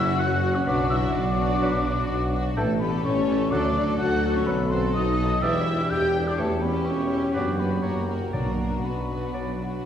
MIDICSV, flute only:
0, 0, Header, 1, 2, 480
1, 0, Start_track
1, 0, Key_signature, 2, "minor"
1, 0, Tempo, 477327
1, 666, Time_signature, 4, 2, 24, 8
1, 7386, Tempo, 498753
1, 9802, End_track
2, 0, Start_track
2, 0, Title_t, "Flute"
2, 0, Program_c, 0, 73
2, 0, Note_on_c, 0, 88, 94
2, 195, Note_on_c, 0, 90, 82
2, 210, Note_off_c, 0, 88, 0
2, 552, Note_on_c, 0, 85, 77
2, 567, Note_off_c, 0, 90, 0
2, 669, Note_off_c, 0, 85, 0
2, 677, Note_on_c, 0, 86, 85
2, 899, Note_off_c, 0, 86, 0
2, 905, Note_on_c, 0, 88, 89
2, 965, Note_off_c, 0, 88, 0
2, 1154, Note_on_c, 0, 86, 82
2, 2321, Note_off_c, 0, 86, 0
2, 2584, Note_on_c, 0, 81, 77
2, 2644, Note_off_c, 0, 81, 0
2, 2819, Note_on_c, 0, 83, 81
2, 3051, Note_off_c, 0, 83, 0
2, 3059, Note_on_c, 0, 85, 82
2, 3530, Note_on_c, 0, 86, 88
2, 3545, Note_off_c, 0, 85, 0
2, 4001, Note_off_c, 0, 86, 0
2, 4007, Note_on_c, 0, 90, 95
2, 4362, Note_off_c, 0, 90, 0
2, 4377, Note_on_c, 0, 85, 80
2, 4492, Note_on_c, 0, 83, 75
2, 4507, Note_off_c, 0, 85, 0
2, 4730, Note_on_c, 0, 84, 89
2, 4745, Note_off_c, 0, 83, 0
2, 4972, Note_off_c, 0, 84, 0
2, 4977, Note_on_c, 0, 87, 85
2, 5451, Note_on_c, 0, 88, 80
2, 5466, Note_off_c, 0, 87, 0
2, 5935, Note_on_c, 0, 91, 83
2, 5950, Note_off_c, 0, 88, 0
2, 6311, Note_on_c, 0, 86, 67
2, 6326, Note_off_c, 0, 91, 0
2, 6411, Note_off_c, 0, 86, 0
2, 6417, Note_on_c, 0, 81, 74
2, 6652, Note_on_c, 0, 83, 66
2, 6668, Note_off_c, 0, 81, 0
2, 6891, Note_on_c, 0, 85, 68
2, 6906, Note_off_c, 0, 83, 0
2, 7380, Note_off_c, 0, 85, 0
2, 7387, Note_on_c, 0, 86, 63
2, 7625, Note_on_c, 0, 83, 55
2, 7640, Note_off_c, 0, 86, 0
2, 7851, Note_on_c, 0, 82, 54
2, 7865, Note_off_c, 0, 83, 0
2, 8091, Note_off_c, 0, 82, 0
2, 8097, Note_on_c, 0, 82, 52
2, 8155, Note_off_c, 0, 82, 0
2, 8349, Note_on_c, 0, 82, 54
2, 8832, Note_on_c, 0, 83, 42
2, 8846, Note_off_c, 0, 82, 0
2, 9789, Note_off_c, 0, 83, 0
2, 9802, End_track
0, 0, End_of_file